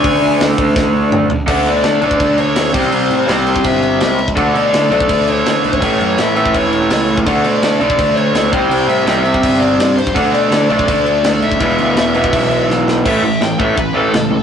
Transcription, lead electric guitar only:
X:1
M:4/4
L:1/16
Q:1/4=166
K:Dlyd
V:1 name="Lead electric guitar"
g4 z12 | f2 d4 d4 c4 =c2- | =c4 c4 e4 e3 z | f2 d4 d4 c4 c2- |
c4 e4 c4 c3 z | f2 d4 d4 c4 =c2 | =g2 e4 e4 d4 =c2 | f2 d4 d2 d6 e2- |
e12 z4 | [K:Alyd] e4 =g2 e2 B2 A6 |]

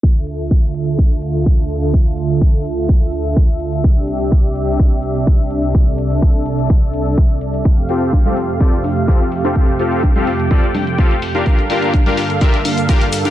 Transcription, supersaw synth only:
X:1
M:4/4
L:1/16
Q:1/4=126
K:Dm
V:1 name="Supersaw synth"
z16 | z16 | z16 | z16 |
z2 [CFGAf]2 z [CFGAf] z2 [CFGAd] z3 [CFGAf] z2 [CFGAf]- | [CFGAf] z [CFGAf]2 z [CFGAf] z2 [CFGAd] z3 [CFGAf] z2 [DFGBf]- | [DFGBf] z [DFGBf]2 z [DFGBf] z2 [DFGBe] z3 [DFGBf] z2 [DFGBf] |]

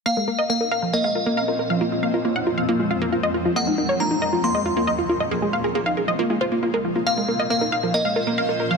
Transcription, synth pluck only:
X:1
M:4/4
L:1/16
Q:1/4=137
K:Bbm
V:1 name="Synth pluck"
f B B e B B f B B f B B f B B f | F F f F F g F f F F f F F e F F | e E E d E E e F F e F F e F F e | A A f A A f A e F F c F F B F F |
f B B e B B f B B f B B f B B f |]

